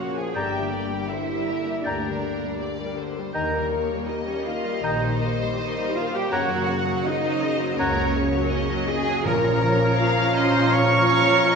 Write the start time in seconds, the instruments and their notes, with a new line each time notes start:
Already playing: harp A#2 C#3 F3 A#3 C#4 A#4, viola section C#3 A#3, french horn section A#3 C#4, cello section F#4, violin section C#5 F#5
0.10 harp F4, violin section G#5
0.16 viola section F3, cello section G#4
0.32 double bass section G1, harp G2, viola section D3, cello section G4, french horn section G4, clarinet D5, violin section E5 G5, oboe G5, flute A#5
0.53 viola section G3
0.60 harp D3
0.71 viola section D3, violin section D5
0.84 harp A#3
0.89 viola section G3
1.09 viola section D3, cello section E4, harp G4, violin section C5 E5
1.29 viola section G3
1.36 harp A#4
1.46 viola section D3, violin section A#4
1.61 harp G4
1.67 viola section G3
1.84 double bass section D2, harp G2, viola section D3, cello section D4, violin section A#4 D5, clarinet D5, oboe G5, flute A#5
2.04 viola section G3
2.10 harp D3
2.22 viola section D3
2.34 harp A#3
2.41 viola section G3
2.59 viola section D3, harp G4, violin section D5
2.78 viola section G3
2.84 harp A#4
2.96 viola section D3, violin section C5
3.10 harp G4
3.16 viola section G3
3.34 double bass section D#2, harp D#3, viola section D#3 A#3, cello section A#3, french horn section A#3, violin section A#4, clarinet D#5, oboe G5, flute A#5
3.54 viola section G3
3.59 harp D#4
3.71 viola section D#3, violin section C#5
3.84 harp A#3
3.91 viola section G3
4.07 viola section D#3, harp G4, violin section D#5
4.26 viola section G3, cello section C#4, violin section C#5
4.34 harp A#4
4.46 viola section D#3, cello section F4, violin section F5
4.58 harp G4
4.64 viola section G3
4.83 double bass section A#1, viola section D#3, harp D#3, cello section D#4, violin section C5 D#5, clarinet D#5, oboe G5, flute A#5
5.02 viola section G3
5.08 harp D#4
5.20 viola section D#3
5.33 harp A#3
5.40 viola section G3
5.57 viola section D#3, cello section D#4, harp G4, violin section D#5
5.77 viola section G3
5.83 harp A#4
5.95 viola section D#3, cello section F4, violin section F5
6.08 harp G4
6.14 viola section G3, cello section G4, violin section G5
6.31 double bass section F#2, harp F#2, viola section C#3, french horn section F#4, cello section F#4, violin section A#4 F#5, clarinet C#5, oboe F#5, flute A#5
6.50 viola section F#3
6.57 harp C#3
6.67 viola section C#3, violin section C#5
6.81 harp A#3
6.86 viola section F#3
7.05 viola section C#3, cello section D#4, harp F#4, violin section C5 D#5
7.24 viola section F#3
7.43 viola section C#3
7.55 harp F#4
7.60 viola section F#3
7.78 double bass section C#2, harp F#2, viola section C#3, cello section C#4, violin section A#4 C#5, clarinet C#5, oboe F#5, flute A#5
7.96 viola section F#3
8.04 harp C#3
8.14 viola section C#3, violin section C#5
8.28 harp A#3
8.34 viola section F#3
8.52 viola section C#3, harp F#4, violin section D#5
8.70 viola section F#3
8.87 viola section C#3, cello section G#4, violin section G#5
9.01 harp F#4
9.06 viola section F#3
9.25 double bass section A#1, timpani A#2, harp A#2, viola section F3 C#4, french horn section C#4 F4, cello section A#4, violin section C#5 A#5, clarinet C#5, oboe F5, flute A#5
9.51 harp F3
9.76 harp C#4
9.99 harp F4, violin section F5
10.34 cello section C5, violin section D#5 C6
10.49 harp F4
10.72 harp A#2, cello section C#5, violin section C#5 C#6
10.97 harp F3
11.08 violin section F5
11.21 harp C#4
11.45 harp F4, violin section D#5